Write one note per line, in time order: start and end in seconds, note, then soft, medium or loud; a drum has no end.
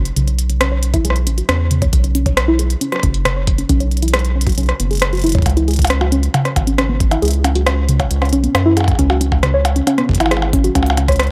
0.00 0.11 F#1 medium
0.05 closed hi-hat medium
0.16 0.99 B1 loud
0.16 0.23 C#3 medium
0.16 closed hi-hat medium
0.27 0.37 C#5 medium
0.27 closed hi-hat soft
0.39 closed hi-hat medium
0.49 0.56 C#4 medium
0.49 closed hi-hat medium
0.61 0.67 C#4 loud
0.61 cross-stick loud
0.61 closed hi-hat medium
0.72 0.78 C#5 medium
0.83 closed hi-hat medium
0.94 1.00 E4 loud
0.94 kick medium
0.94 closed hi-hat medium
1.05 1.28 B1 medium
1.05 1.11 G#4 medium
1.05 closed hi-hat medium
1.10 cross-stick medium
1.16 closed hi-hat soft
1.27 1.42 A1 medium
1.27 1.33 C#4 medium
1.27 closed hi-hat medium
1.38 1.44 F#4 medium
1.38 closed hi-hat soft
1.49 1.88 E2 loud
1.49 1.53 C#4 medium
1.49 cross-stick loud
1.49 closed hi-hat medium
1.71 1.77 C#3 medium
1.71 closed hi-hat medium
1.82 1.91 C#5 medium
1.82 kick loud
1.82 closed hi-hat medium
1.93 2.76 B1 loud
1.93 kick medium
1.93 closed hi-hat medium
2.04 2.10 C#4 medium
2.04 closed hi-hat soft
2.15 2.21 C#4 loud
2.15 closed hi-hat medium
2.26 2.32 C#5 medium
2.26 kick medium
2.26 closed hi-hat medium
2.37 cross-stick loud
2.37 closed hi-hat medium
2.48 2.54 E4 loud
2.59 2.65 G#4 medium
2.59 closed hi-hat medium
2.70 closed hi-hat medium
2.81 2.87 C#4 medium
2.81 closed hi-hat medium
2.92 2.98 F#4 medium
2.92 cross-stick medium
2.92 closed hi-hat soft
2.96 cross-stick soft
3.00 3.64 F#1 loud
3.00 3.07 C#4 medium
3.00 kick medium
3.00 cross-stick soft
3.00 closed hi-hat medium
3.14 closed hi-hat medium
3.25 3.32 C#3 medium
3.25 cross-stick loud
3.25 closed hi-hat medium
3.36 3.46 C#5 medium
3.47 kick loud
3.47 closed hi-hat medium
3.58 3.65 C#4 medium
3.58 closed hi-hat medium
3.69 4.52 B1 medium
3.69 3.76 C#4 loud
3.69 kick medium
3.69 closed hi-hat medium
3.80 3.87 C#5 medium
3.80 closed hi-hat soft
3.91 closed hi-hat soft
3.97 closed hi-hat soft
4.02 4.09 E4 loud
4.02 closed hi-hat medium
4.08 closed hi-hat medium
4.14 4.20 G#4 medium
4.14 cross-stick loud
4.14 closed hi-hat medium
4.19 closed hi-hat soft
4.25 closed hi-hat soft
4.36 4.42 C#4 medium
4.41 closed hi-hat medium
4.47 4.53 F#4 medium
4.47 kick medium
4.47 closed hi-hat soft
4.49 closed hi-hat soft
4.52 closed hi-hat soft
4.55 4.61 C#4 medium
4.55 closed hi-hat soft
4.58 4.73 B1 medium
4.58 closed hi-hat medium
4.60 closed hi-hat soft
4.63 closed hi-hat soft
4.66 cross-stick medium
4.66 closed hi-hat soft
4.69 closed hi-hat soft
4.80 5.41 F#1 loud
4.80 4.89 B3 medium
4.80 closed hi-hat medium
4.91 4.97 G#4 medium
4.91 closed hi-hat soft
4.93 closed hi-hat soft
4.95 closed hi-hat soft
4.97 closed hi-hat soft
5.00 cross-stick loud
5.00 closed hi-hat soft
5.02 closed hi-hat medium
5.13 5.17 F#4 medium
5.13 closed hi-hat soft
5.15 closed hi-hat soft
5.17 closed hi-hat soft
5.19 closed hi-hat soft
5.22 closed hi-hat soft
5.24 5.28 E4 medium
5.24 closed hi-hat soft
5.27 closed hi-hat soft
5.29 closed hi-hat medium
5.32 5.41 C#5 medium
5.32 kick loud
5.32 closed hi-hat medium
5.39 kick medium
5.39 closed hi-hat soft
5.42 kick medium
5.46 6.29 C#2 loud
5.46 kick medium
5.46 closed hi-hat medium
5.46 percussion blips medium
5.50 closed hi-hat soft
5.57 5.63 E4 loud
5.57 closed hi-hat soft
5.68 5.74 G#4 medium
5.68 closed hi-hat soft
5.71 closed hi-hat soft
5.74 closed hi-hat soft
5.76 kick medium
5.76 closed hi-hat soft
5.79 closed hi-hat medium
5.82 closed hi-hat medium
5.85 closed hi-hat medium
5.85 percussion blips medium
5.87 5.96 C#4 medium
5.87 cross-stick loud
5.87 closed hi-hat medium
5.90 closed hi-hat medium
6.01 6.07 F#4 medium
6.01 percussion blips soft
6.12 6.16 C#4 medium
6.12 closed hi-hat medium
6.23 closed hi-hat soft
6.34 6.40 C#3 medium
6.34 closed hi-hat medium
6.34 percussion blips medium
6.45 6.55 C#5 medium
6.45 cross-stick medium
6.45 closed hi-hat soft
6.56 7.17 G#1 loud
6.56 kick medium
6.56 closed hi-hat medium
6.56 percussion blips medium
6.67 6.73 C#4 medium
6.67 closed hi-hat soft
6.78 6.84 C#4 loud
6.78 cross-stick loud
6.78 closed hi-hat medium
6.89 6.99 B3 medium
7.00 kick loud
7.00 closed hi-hat medium
7.11 7.18 E4 loud
7.11 closed hi-hat medium
7.11 percussion blips medium
7.22 8.05 C#2 loud
7.22 7.29 G#4 medium
7.22 closed hi-hat soft
7.25 closed hi-hat soft
7.28 closed hi-hat medium
7.31 closed hi-hat medium
7.44 7.51 C#4 medium
7.44 closed hi-hat medium
7.44 percussion blips medium
7.55 7.62 F#4 medium
7.55 closed hi-hat soft
7.66 7.70 C#4 medium
7.66 cross-stick loud
7.66 closed hi-hat medium
7.66 percussion blips medium
7.89 7.95 C#3 medium
7.89 closed hi-hat medium
8.00 8.09 C#5 medium
8.00 kick medium
8.00 closed hi-hat soft
8.00 percussion blips medium
8.11 8.34 C#2 medium
8.11 closed hi-hat medium
8.22 8.28 C#4 medium
8.22 cross-stick medium
8.22 closed hi-hat soft
8.22 percussion blips medium
8.25 closed hi-hat soft
8.29 8.39 C#4 loud
8.29 closed hi-hat soft
8.33 8.48 B1 medium
8.33 closed hi-hat medium
8.44 8.53 B3 medium
8.44 closed hi-hat soft
8.55 8.93 F#2 loud
8.55 cross-stick loud
8.55 closed hi-hat medium
8.55 percussion blips medium
8.66 8.72 E4 loud
8.77 8.83 G#4 medium
8.77 closed hi-hat medium
8.77 percussion blips soft
8.80 percussion blips soft
8.84 kick loud
8.84 closed hi-hat soft
8.84 percussion blips soft
8.88 percussion blips soft
8.91 percussion blips soft
8.95 9.82 C#2 medium
8.95 9.05 C#4 medium
8.95 kick medium
8.95 closed hi-hat medium
8.95 percussion blips soft
9.10 9.16 F#4 medium
9.10 percussion blips medium
9.21 9.25 C#4 medium
9.21 closed hi-hat medium
9.32 kick medium
9.32 percussion blips medium
9.43 9.49 C#3 medium
9.43 cross-stick loud
9.43 closed hi-hat medium
9.54 9.63 C#5 medium
9.65 closed hi-hat medium
9.65 percussion blips medium
9.76 9.82 C#4 medium
9.76 closed hi-hat soft
9.87 9.93 C#4 loud
9.87 closed hi-hat medium
9.87 percussion blips medium
9.98 10.07 B3 medium
9.98 cross-stick medium
9.98 closed hi-hat soft
10.09 10.70 G#1 loud
10.09 kick medium
10.11 kick medium
10.14 kick soft
10.14 closed hi-hat medium
10.16 kick soft
10.18 10.26 E4 loud
10.18 kick soft
10.18 closed hi-hat soft
10.18 percussion blips medium
10.26 percussion blips medium
10.31 10.37 G#4 medium
10.31 cross-stick loud
10.31 closed hi-hat medium
10.31 percussion blips medium
10.37 percussion blips soft
10.42 percussion blips medium
10.53 10.59 C#4 medium
10.53 kick loud
10.53 closed hi-hat medium
10.64 10.71 F#4 medium
10.64 closed hi-hat soft
10.75 11.31 C#2 loud
10.75 10.79 C#4 medium
10.75 kick medium
10.75 closed hi-hat medium
10.75 percussion blips soft
10.83 closed hi-hat soft
10.83 percussion blips medium
10.90 percussion blips medium
10.97 11.04 C#3 medium
10.97 closed hi-hat medium
10.97 percussion blips medium
11.08 11.18 C#5 medium
11.08 kick medium
11.08 cross-stick medium
11.08 closed hi-hat medium
11.12 closed hi-hat soft
11.16 cross-stick loud
11.16 closed hi-hat soft
11.19 closed hi-hat medium
11.23 closed hi-hat soft
11.27 closed hi-hat soft